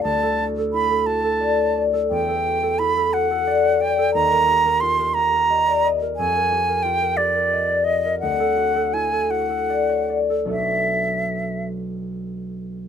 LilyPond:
<<
  \new Staff \with { instrumentName = "Flute" } { \time 6/8 \key e \phrygian \tempo 4. = 58 a''4 b''8 a''4 r8 | g''4 b''8 fis''4 g''8 | \key b \dorian ais''4 c'''8 ais''4. | aes''4 g''8 d''4 ees''8 |
fis''4 gis''8 fis''4 r8 | e''4. r4. | }
  \new Staff \with { instrumentName = "Harp" } { \time 6/8 \key e \phrygian <d, e' d''>16 a'16 fis'16 a'16 e'16 a'16 fis'16 a'16 d''16 des''16 d''16 a'16 | e,16 a'16 fis'16 a'16 e'16 a'16 fis'16 a'16 d''16 des''16 d''16 a'16 | \key b \dorian dis,16 ais'16 g'16 ais'16 eis'16 ais'16 g'16 ais'16 dis''16 d''16 dis''16 ais'16 | f,16 bes'16 g'16 bes'16 f'16 bes'16 g'16 bes'16 ees''16 d''16 ees''16 bes'16 |
d,16 a'16 fis'16 a'16 e'16 a'16 fis'16 a'16 d''16 cis''16 d''16 a'16 | <b,, d' fis' a' cis''>2. | }
>>